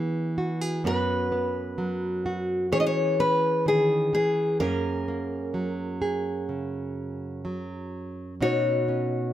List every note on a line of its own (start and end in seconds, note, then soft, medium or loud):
0.00 0.85 E3 soft
0.00 0.79 B3 soft
0.00 0.79 E4 soft
0.00 0.38 G#4 medium
0.38 0.61 F#4 medium
0.61 0.85 G#4 soft
0.84 2.71 F#2 medium
0.84 1.31 B3 medium
0.84 2.72 C#4 medium
0.84 2.25 F#4 medium
0.84 2.78 B4 medium
1.32 2.66 B3 soft
1.78 2.66 F#3 medium
2.26 2.72 F#4 medium
2.72 4.12 E3 medium
2.72 3.19 C#4 soft
2.72 4.55 G#4 medium
2.72 2.79 C#5 medium
2.80 2.86 D#5 medium
2.86 3.20 C#5 medium
3.20 4.61 C#4 soft
3.20 3.68 B4 medium
3.66 4.13 D#3 medium
3.66 4.13 G#4 medium
4.13 4.60 E3 medium
4.13 4.60 G#4 medium
4.60 8.39 F#2 medium
4.60 5.07 A#3 medium
4.60 8.40 C#4 medium
4.60 6.00 G#4 medium
4.60 6.45 A#4 medium
5.08 8.34 A#3 soft
5.54 7.44 F#3 medium
6.02 8.34 G#4 medium
6.49 7.44 C#3 soft
7.45 8.34 F#3 medium
8.41 9.33 B2 medium
8.41 8.87 C#4 medium
8.41 9.33 D#4 medium
8.41 9.33 F#4 medium
8.41 9.33 C#5 medium
8.88 9.33 C#4 soft